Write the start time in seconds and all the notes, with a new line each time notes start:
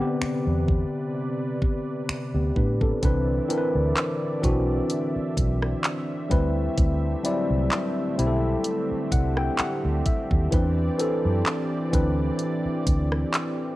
Already playing: C3 B4 D5 G5
0.00 D3 B3 C4 G4
0.22 finger snap, muted fingered electric bass stroke
0.47 E2
0.68 kick
1.62 kick
2.09 finger snap, muted fingered electric bass stroke
2.34 D2 B3 G4
2.56 A2 D4 B4, kick
2.81 C4 A4, kick
3.02 C2 D3 E3 C4 D4 B4 D5 E5, kick, closed hi-hat
3.48 E3 C4 D4 A#4, closed hi-hat
3.57 B4
3.75 D2
3.97 clap, closed hi-hat
4.42 B1 E3 C4 D4 F#4, kick, closed hi-hat
4.90 closed hi-hat
5.16 muted fingered electric bass stroke
5.37 B1, kick, closed hi-hat
5.62 cross-stick
5.84 clap, closed hi-hat
6.29 D2 D3 G3 A3 C4 E4 G4 B4, kick, closed hi-hat
6.78 D2, kick, closed hi-hat
7.23 F#3 C4 E4 D5, closed hi-hat
7.30 G3
7.50 C2
7.71 clap, closed hi-hat
8.17 B1 G3 C4 E4 G4, closed hi-hat
8.27 A4
8.64 closed hi-hat
8.91 muted fingered electric bass stroke
9.12 C2 F#5, kick, closed hi-hat
9.37 G5, cross-stick
9.59 F#5, muted fingered electric bass stroke, clap, closed hi-hat
9.85 D2
10.06 E5, kick, closed hi-hat
10.31 D#2, kick
10.51 E2 E3 C4 D4 B4 D5, kick, closed hi-hat
10.98 E3 C4 D4 A4, closed hi-hat
11.25 F#2
11.46 clap, closed hi-hat
11.92 D2 E3 C4 D4 B4, kick, closed hi-hat
12.39 closed hi-hat
12.65 muted fingered electric bass stroke
12.87 D2, kick, closed hi-hat
13.12 cross-stick
13.34 clap, closed hi-hat